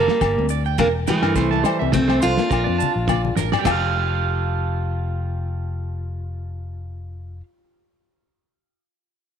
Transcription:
Already playing: G3 A#3
0.08 A#3, snare
0.21 G1, kick, snare, muted conga, low agogo, maracas
0.37 D2 C4
0.49 D5, maracas
0.65 G5, maracas
0.78 E1 A#3 D4 A#4, kick, snare, high conga, low agogo, maracas
1.07 E3 A3 G4 G5, snare, high conga, maracas
1.22 G2 A#4, snare, low agogo
1.36 C2 C4 C5, kick, snare, maracas
1.51 A3 A5, snare
1.64 G3 C5, snare, muted conga, low agogo, maracas
1.79 C2 C4 E5
1.92 A3 C4, muted clean electric guitar stroke, kick, snare, high conga, maracas
2.08 A3 C5, snare, low agogo
2.20 C2 D4 F4 C5, muted conga, maracas
2.37 A#3, snare, maracas
2.50 A#1 A#4, kick, snare, low agogo, maracas
2.54 muted conga
2.64 F2 C4 D5
2.78 A5, maracas
2.83 high conga
2.96 A#1
3.08 A#3 D5, kick, snare, high conga, low agogo, maracas
3.25 high conga
3.36 A1 D4 A#4, snare, low conga, maracas
3.52 D5, snare, low conga, low agogo, maracas
3.59 G4
3.65 F1 F3 F4 A4, kick, snare, crash, muted conga, low agogo, maracas
3.71 F5

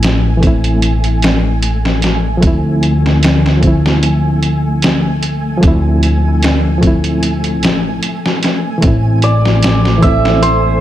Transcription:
Already playing: A1 E3 A3 C4 E4 G#5
0.03 snare, closed hi-hat
0.37 E3 A3
0.43 C4, kick, closed hi-hat
0.47 E4
0.64 closed hi-hat
0.82 closed hi-hat
1.04 closed hi-hat
1.22 snare, closed hi-hat
1.63 closed hi-hat
1.85 snare
2.02 snare, closed hi-hat
2.37 F3 A3
2.42 D2 C4, kick, closed hi-hat
2.47 E4
2.83 closed hi-hat
3.06 snare
3.23 snare, closed hi-hat
3.46 snare
3.57 F3 A3
3.63 C4, kick, closed hi-hat
3.67 E4
3.86 snare
4.03 closed hi-hat
4.43 closed hi-hat
4.82 snare, closed hi-hat
5.23 closed hi-hat
5.57 F3 A3
5.63 D2 C4, kick, closed hi-hat
5.67 E4
6.03 closed hi-hat
6.43 snare, closed hi-hat
6.78 F3 A3
6.83 C4, kick, closed hi-hat
6.87 E4
7.04 closed hi-hat
7.23 closed hi-hat
7.44 closed hi-hat
7.63 A1, snare, closed hi-hat
8.03 closed hi-hat
8.26 snare
8.43 snare, closed hi-hat
8.78 E3 A3
8.82 A1 C4 A4 C5 C6, kick, closed hi-hat
8.87 E4
9.22 D5, closed hi-hat
9.45 snare
9.63 snare, closed hi-hat
9.85 snare
9.98 E3 A3
10.02 C4 E5, kick, closed hi-hat
10.08 E4
10.25 snare
10.42 C5, closed hi-hat

